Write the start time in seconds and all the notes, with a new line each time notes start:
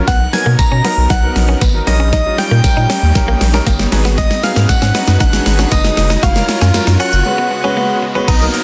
Already playing: riser
0.08 B1 B3 A#4 F#5, kick, snare, closed hi-hat
0.33 F#3 B3 D#4 A#4 G#5, muted clean electric guitar stroke, snare, open hi-hat
0.46 B2 A#3
0.59 B2 A#5, muted clean electric guitar stroke, kick, snare, closed hi-hat, tambourine
0.72 B2 C#4
0.84 F#3 B3 D#4 A#4, snare, open hi-hat
0.97 B1
1.10 B1 D#4 F#5, kick, snare, closed hi-hat
1.23 F#3 B3 D#4 A#4
1.36 A#1, muted clean electric guitar stroke, snare, open hi-hat
1.49 C#4
1.61 G#1 B3, kick, snare, closed hi-hat, tambourine
1.74 F#3 B3 D#4 A#4
1.87 A#1 G3 C#4 D#4 A#4 D#5, muted clean electric guitar stroke, snare, open hi-hat
2.00 C#4
2.13 D#4 D#5, kick, snare, closed hi-hat
2.25 G3 C#4 D#4 F4
2.38 G5, muted clean electric guitar stroke, snare, open hi-hat
2.51 A#2 A#3
2.64 A#2 G3 C#4 D#4 A#4, muted clean electric guitar stroke, kick, snare, closed hi-hat, tambourine
2.77 A#2 D#4
2.90 C#4, snare, open hi-hat
3.02 D#2
3.15 A#1 G3 C#4 D#4 A#4, kick, snare, closed hi-hat
3.28 A#3
3.41 A#1, muted clean electric guitar stroke, snare, open hi-hat
3.53 G3 C#4 D#4 A#4, snare
3.67 G1 A#3 G5, kick, snare, closed hi-hat, tambourine
3.79 snare
3.92 G#1 F#3 G#3 B3 D#4 F#4 G#4 B4 A#5, muted clean electric guitar stroke, snare, open hi-hat
4.05 B3, snare
4.18 G#3 D#5, kick, snare, closed hi-hat, shaker
4.31 snare, shaker
4.43 F#3 B3 D#4 G#4 F5, muted clean electric guitar stroke, snare, open hi-hat, shaker
4.56 G#2 A#3, snare, shaker
4.69 G#2 F#5, muted clean electric guitar stroke, kick, snare, closed hi-hat, tambourine, shaker
4.82 G#2 C#4, snare, shaker
4.95 F#3 B3 D#4 F#4, snare, open hi-hat, shaker
5.08 F#2, snare, shaker
5.20 G#1 D#4 F#5, kick, snare, closed hi-hat, shaker
5.33 F#3 B3 D#4 G#4, snare, shaker
5.46 G#1, muted clean electric guitar stroke, snare, open hi-hat, shaker
5.59 C#4, snare, shaker
5.72 F#1 B3 D#5, kick, snare, closed hi-hat, tambourine, shaker
5.84 F#3 B3 D#4 G#4, snare, shaker
5.97 F1 D#5, muted clean electric guitar stroke, snare, open hi-hat, shaker
6.10 D#4, snare, shaker
6.23 F#1 F#3 C#4 F4 F#4 A#4 F5, kick, snare, closed hi-hat, shaker
6.36 F#3 C#4 F4 A#4, snare, shaker
6.49 muted clean electric guitar stroke, snare, open hi-hat, shaker
6.61 F#2 C#4, snare, shaker
6.74 F#2 F#3 C#4 F4 A#4, muted clean electric guitar stroke, snare, closed hi-hat, tambourine, shaker
6.87 F#2 D#4, snare, shaker
7.00 C#4 F#5, open hi-hat, shaker
7.13 F#1, shaker
7.25 C#3 G#3 B3 C#4 F#4 B4
7.38 B3
7.51 muted clean electric guitar stroke
7.64 G#3 C#4 F#4 B4
7.77 A#3
8.03 muted clean electric guitar stroke
8.15 G#3 B3 C#4 F#4 B4
8.28 B1 B2 B3 D#4 A#4 D#5, kick, closed hi-hat, crash, downlifter, shaker
8.41 F#3 A#3 B3 D#4 A#4, shaker
8.54 muted clean electric guitar stroke, open hi-hat, shaker